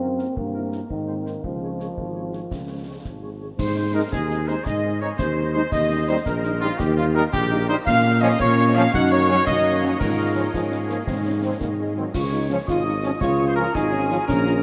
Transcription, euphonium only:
0, 0, Header, 1, 2, 480
1, 0, Start_track
1, 0, Key_signature, -5, "major"
1, 0, Tempo, 356718
1, 495, Time_signature, 6, 3, 24, 8
1, 4825, Key_signature, -4, "major"
1, 10584, Key_signature, -5, "major"
1, 19685, End_track
2, 0, Start_track
2, 0, Title_t, "Euphonium"
2, 0, Program_c, 0, 58
2, 0, Note_on_c, 0, 60, 88
2, 500, Note_on_c, 0, 58, 76
2, 520, Note_off_c, 0, 60, 0
2, 1211, Note_off_c, 0, 58, 0
2, 1219, Note_on_c, 0, 51, 73
2, 1936, Note_on_c, 0, 53, 64
2, 1956, Note_off_c, 0, 51, 0
2, 4103, Note_off_c, 0, 53, 0
2, 14183, Note_on_c, 0, 53, 89
2, 14291, Note_off_c, 0, 53, 0
2, 14422, Note_on_c, 0, 56, 85
2, 14529, Note_off_c, 0, 56, 0
2, 14652, Note_on_c, 0, 58, 75
2, 14879, Note_off_c, 0, 58, 0
2, 14895, Note_on_c, 0, 60, 87
2, 15004, Note_off_c, 0, 60, 0
2, 15140, Note_on_c, 0, 61, 79
2, 15248, Note_off_c, 0, 61, 0
2, 15374, Note_on_c, 0, 60, 76
2, 15600, Note_off_c, 0, 60, 0
2, 15622, Note_on_c, 0, 58, 82
2, 15729, Note_off_c, 0, 58, 0
2, 15867, Note_on_c, 0, 56, 81
2, 16086, Note_off_c, 0, 56, 0
2, 16096, Note_on_c, 0, 54, 62
2, 16320, Note_off_c, 0, 54, 0
2, 16341, Note_on_c, 0, 65, 86
2, 16449, Note_off_c, 0, 65, 0
2, 16589, Note_on_c, 0, 63, 77
2, 16807, Note_off_c, 0, 63, 0
2, 16828, Note_on_c, 0, 61, 74
2, 16934, Note_off_c, 0, 61, 0
2, 17078, Note_on_c, 0, 65, 99
2, 17292, Note_off_c, 0, 65, 0
2, 17311, Note_on_c, 0, 63, 78
2, 17416, Note_off_c, 0, 63, 0
2, 17550, Note_on_c, 0, 61, 78
2, 17655, Note_off_c, 0, 61, 0
2, 17789, Note_on_c, 0, 65, 103
2, 18453, Note_off_c, 0, 65, 0
2, 18501, Note_on_c, 0, 63, 94
2, 18742, Note_on_c, 0, 61, 90
2, 18762, Note_off_c, 0, 63, 0
2, 18986, Note_on_c, 0, 65, 90
2, 19007, Note_off_c, 0, 61, 0
2, 19210, Note_off_c, 0, 65, 0
2, 19218, Note_on_c, 0, 61, 97
2, 19685, Note_off_c, 0, 61, 0
2, 19685, End_track
0, 0, End_of_file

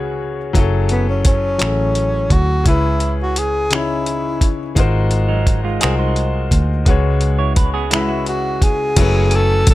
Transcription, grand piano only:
0, 0, Header, 1, 2, 480
1, 0, Start_track
1, 0, Tempo, 701754
1, 378, Time_signature, 6, 3, 24, 8
1, 6662, End_track
2, 0, Start_track
2, 0, Title_t, "Grand piano"
2, 0, Program_c, 0, 0
2, 0, Control_c, 0, 64, 127
2, 0, Note_on_c, 0, 49, 73
2, 0, Note_on_c, 0, 61, 64
2, 0, Note_on_c, 0, 66, 66
2, 0, Note_on_c, 0, 68, 61
2, 0, Note_on_c, 0, 71, 90
2, 0, Note_on_c, 0, 73, 82
2, 246, Note_off_c, 0, 49, 0
2, 251, Note_off_c, 0, 61, 0
2, 253, Note_off_c, 0, 66, 0
2, 258, Note_off_c, 0, 68, 0
2, 262, Note_off_c, 0, 73, 0
2, 364, Note_on_c, 0, 54, 85
2, 375, Note_on_c, 0, 61, 73
2, 382, Note_on_c, 0, 64, 73
2, 387, Control_c, 0, 64, 0
2, 389, Note_on_c, 0, 68, 77
2, 390, Note_off_c, 0, 71, 0
2, 395, Note_on_c, 0, 69, 90
2, 523, Control_c, 0, 64, 127
2, 968, Note_off_c, 0, 54, 0
2, 973, Note_off_c, 0, 61, 0
2, 977, Note_off_c, 0, 64, 0
2, 980, Note_off_c, 0, 68, 0
2, 984, Note_off_c, 0, 69, 0
2, 1082, Note_on_c, 0, 54, 61
2, 1092, Note_on_c, 0, 61, 55
2, 1098, Note_on_c, 0, 64, 49
2, 1107, Note_on_c, 0, 68, 54
2, 1115, Note_on_c, 0, 69, 60
2, 1687, Note_off_c, 0, 54, 0
2, 1692, Note_off_c, 0, 61, 0
2, 1695, Note_off_c, 0, 64, 0
2, 1700, Note_off_c, 0, 68, 0
2, 1704, Note_off_c, 0, 69, 0
2, 1804, Note_on_c, 0, 49, 73
2, 1812, Note_on_c, 0, 61, 67
2, 1823, Note_on_c, 0, 64, 69
2, 1828, Control_c, 0, 64, 0
2, 1830, Note_on_c, 0, 68, 64
2, 1836, Note_on_c, 0, 71, 83
2, 1943, Control_c, 0, 64, 127
2, 2408, Note_off_c, 0, 49, 0
2, 2412, Note_off_c, 0, 61, 0
2, 2417, Note_off_c, 0, 64, 0
2, 2421, Note_off_c, 0, 68, 0
2, 2424, Note_off_c, 0, 71, 0
2, 2532, Note_on_c, 0, 49, 56
2, 2541, Note_on_c, 0, 61, 58
2, 2545, Note_on_c, 0, 63, 45
2, 2554, Note_on_c, 0, 68, 55
2, 2561, Note_on_c, 0, 73, 68
2, 2586, Note_off_c, 0, 63, 0
2, 2593, Note_on_c, 0, 64, 58
2, 3132, Note_off_c, 0, 49, 0
2, 3137, Note_off_c, 0, 61, 0
2, 3143, Note_off_c, 0, 68, 0
2, 3146, Note_off_c, 0, 73, 0
2, 3162, Note_off_c, 0, 64, 0
2, 3251, Note_on_c, 0, 56, 83
2, 3258, Note_on_c, 0, 63, 83
2, 3267, Note_on_c, 0, 65, 79
2, 3268, Control_c, 0, 64, 0
2, 3270, Note_on_c, 0, 66, 78
2, 3278, Note_on_c, 0, 70, 80
2, 3280, Note_on_c, 0, 72, 86
2, 3374, Control_c, 0, 64, 127
2, 3851, Note_off_c, 0, 56, 0
2, 3855, Note_off_c, 0, 63, 0
2, 3859, Note_off_c, 0, 65, 0
2, 3861, Note_off_c, 0, 66, 0
2, 3865, Note_off_c, 0, 70, 0
2, 3866, Note_off_c, 0, 72, 0
2, 3967, Note_on_c, 0, 56, 74
2, 3971, Note_on_c, 0, 63, 60
2, 3978, Note_on_c, 0, 65, 66
2, 3984, Note_on_c, 0, 66, 68
2, 3991, Note_on_c, 0, 70, 68
2, 3996, Note_on_c, 0, 72, 78
2, 4569, Note_off_c, 0, 56, 0
2, 4572, Note_off_c, 0, 63, 0
2, 4575, Note_off_c, 0, 65, 0
2, 4578, Note_off_c, 0, 66, 0
2, 4582, Note_off_c, 0, 70, 0
2, 4584, Note_off_c, 0, 72, 0
2, 4688, Note_on_c, 0, 49, 77
2, 4697, Note_on_c, 0, 56, 75
2, 4701, Note_on_c, 0, 66, 78
2, 4708, Control_c, 0, 64, 0
2, 4710, Note_on_c, 0, 71, 71
2, 4718, Note_on_c, 0, 73, 87
2, 4838, Control_c, 0, 64, 127
2, 5290, Note_off_c, 0, 49, 0
2, 5295, Note_off_c, 0, 56, 0
2, 5297, Note_off_c, 0, 66, 0
2, 5301, Note_off_c, 0, 71, 0
2, 5305, Note_off_c, 0, 73, 0
2, 5411, Note_on_c, 0, 49, 68
2, 5417, Note_on_c, 0, 56, 66
2, 5425, Note_on_c, 0, 64, 51
2, 5433, Note_on_c, 0, 71, 64
2, 5441, Note_on_c, 0, 76, 77
2, 5466, Note_off_c, 0, 64, 0
2, 5468, Note_on_c, 0, 66, 68
2, 6011, Note_off_c, 0, 49, 0
2, 6015, Note_off_c, 0, 56, 0
2, 6023, Note_off_c, 0, 71, 0
2, 6027, Note_off_c, 0, 76, 0
2, 6040, Note_off_c, 0, 66, 0
2, 6130, Note_on_c, 0, 54, 84
2, 6136, Note_on_c, 0, 61, 76
2, 6142, Note_on_c, 0, 64, 73
2, 6148, Control_c, 0, 64, 0
2, 6148, Note_on_c, 0, 80, 79
2, 6156, Note_on_c, 0, 57, 76
2, 6159, Note_on_c, 0, 71, 92
2, 6263, Control_c, 0, 64, 127
2, 6662, Note_off_c, 0, 54, 0
2, 6662, Note_off_c, 0, 57, 0
2, 6662, Note_off_c, 0, 61, 0
2, 6662, Note_off_c, 0, 64, 0
2, 6662, Note_off_c, 0, 71, 0
2, 6662, Note_off_c, 0, 80, 0
2, 6662, End_track
0, 0, End_of_file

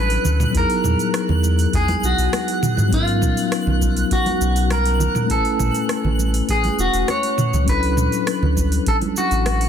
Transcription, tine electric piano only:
0, 0, Header, 1, 2, 480
1, 0, Start_track
1, 0, Key_signature, 3, "major"
1, 0, Tempo, 594059
1, 442, Time_signature, 4, 2, 24, 8
1, 7829, End_track
2, 0, Start_track
2, 0, Title_t, "Tine electric piano"
2, 0, Program_c, 0, 4
2, 0, Control_c, 0, 64, 127
2, 0, Note_on_c, 0, 54, 80
2, 0, Note_on_c, 0, 61, 75
2, 0, Note_on_c, 0, 62, 77
2, 0, Note_on_c, 0, 64, 83
2, 0, Note_on_c, 0, 69, 97
2, 159, Note_off_c, 0, 54, 0
2, 167, Note_off_c, 0, 61, 0
2, 174, Note_off_c, 0, 62, 0
2, 181, Note_off_c, 0, 64, 0
2, 189, Note_off_c, 0, 69, 0
2, 412, Note_on_c, 0, 54, 89
2, 426, Note_on_c, 0, 59, 79
2, 442, Note_on_c, 0, 63, 77
2, 453, Control_c, 0, 64, 0
2, 456, Note_on_c, 0, 64, 77
2, 471, Note_on_c, 0, 68, 98
2, 585, Control_c, 0, 64, 127
2, 2078, Note_off_c, 0, 54, 0
2, 2085, Note_off_c, 0, 59, 0
2, 2094, Note_off_c, 0, 63, 0
2, 2100, Note_off_c, 0, 64, 0
2, 2108, Note_off_c, 0, 68, 0
2, 2332, Note_on_c, 0, 54, 91
2, 2347, Note_on_c, 0, 59, 84
2, 2362, Note_on_c, 0, 61, 75
2, 2371, Control_c, 0, 64, 0
2, 2377, Note_on_c, 0, 63, 80
2, 2393, Note_on_c, 0, 70, 98
2, 2503, Control_c, 0, 64, 127
2, 3998, Note_off_c, 0, 54, 0
2, 4006, Note_off_c, 0, 59, 0
2, 4014, Note_off_c, 0, 61, 0
2, 4021, Note_off_c, 0, 63, 0
2, 4029, Note_off_c, 0, 70, 0
2, 4249, Note_on_c, 0, 57, 86
2, 4264, Note_on_c, 0, 61, 76
2, 4279, Note_on_c, 0, 64, 79
2, 4293, Control_c, 0, 64, 0
2, 4294, Note_on_c, 0, 80, 77
2, 4309, Note_on_c, 0, 71, 99
2, 4455, Control_c, 0, 64, 127
2, 5917, Note_off_c, 0, 57, 0
2, 5924, Note_off_c, 0, 61, 0
2, 5932, Note_off_c, 0, 64, 0
2, 5940, Note_off_c, 0, 80, 0
2, 5947, Note_off_c, 0, 71, 0
2, 6173, Note_on_c, 0, 54, 83
2, 6188, Note_on_c, 0, 61, 81
2, 6204, Note_on_c, 0, 62, 80
2, 6213, Control_c, 0, 64, 0
2, 6220, Note_on_c, 0, 64, 77
2, 6233, Note_on_c, 0, 69, 94
2, 6374, Control_c, 0, 64, 127
2, 7829, Note_off_c, 0, 54, 0
2, 7829, Note_off_c, 0, 61, 0
2, 7829, Note_off_c, 0, 62, 0
2, 7829, Note_off_c, 0, 64, 0
2, 7829, Note_off_c, 0, 69, 0
2, 7829, End_track
0, 0, End_of_file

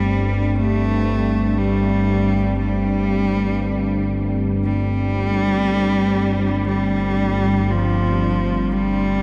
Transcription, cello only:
0, 0, Header, 1, 2, 480
1, 0, Start_track
1, 0, Tempo, 500000
1, 8855, End_track
2, 0, Start_track
2, 0, Title_t, "Cello"
2, 0, Program_c, 0, 42
2, 0, Note_on_c, 0, 55, 90
2, 538, Note_on_c, 0, 57, 98
2, 552, Note_off_c, 0, 55, 0
2, 1516, Note_on_c, 0, 55, 92
2, 1531, Note_off_c, 0, 57, 0
2, 2487, Note_off_c, 0, 55, 0
2, 2499, Note_on_c, 0, 55, 89
2, 3918, Note_off_c, 0, 55, 0
2, 4459, Note_on_c, 0, 55, 113
2, 6376, Note_off_c, 0, 55, 0
2, 6414, Note_on_c, 0, 55, 100
2, 7400, Note_on_c, 0, 53, 95
2, 7414, Note_off_c, 0, 55, 0
2, 8374, Note_on_c, 0, 55, 96
2, 8389, Note_off_c, 0, 53, 0
2, 8855, Note_off_c, 0, 55, 0
2, 8855, End_track
0, 0, End_of_file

